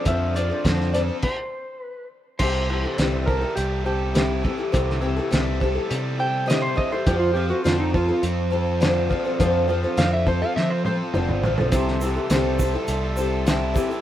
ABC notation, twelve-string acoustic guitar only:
X:1
M:4/4
L:1/16
Q:1/4=103
K:C
V:1 name="Twelve-string acoustic guitar"
[D,F,CDAc]2 [CDAc] [CDAc] [D,F,CDAc]2 [CDAc] [CDAc] z8 | [CEGA]2 [CEGA] [EGA] [CEGA]2 [CEGA] [EGA]3 [CEGA]2 [CEGA]2 [CEGA] [EGA] | [CEGA]2 [CEGA] [EGA] [CEGA]2 [CEGA] [EGA]3 [CEGA]2 [CEGA]2 [CEGA] [EGA] | [D,F,CFAc]2 [CFAc] [CFAc] [D,F,CFAc]2 [CFAc] [CFAc]3 [CFAc]2 [D,F,CFAc]2 [CFAc] [CFAc] |
[D,F,CFAc]2 [CFAc] [CFAc] [D,F,CFAc]2 [CFAc] [CFAc]3 [CFAc]2 [D,F,CFAc]2 [CFAc] [CFAc] | [CEGA]2 [CEGA] [EGA] [CEGA]2 [CEGA] [EGA]3 [CEGA]2 [CEGA]2 [CEGA] [EGA] |]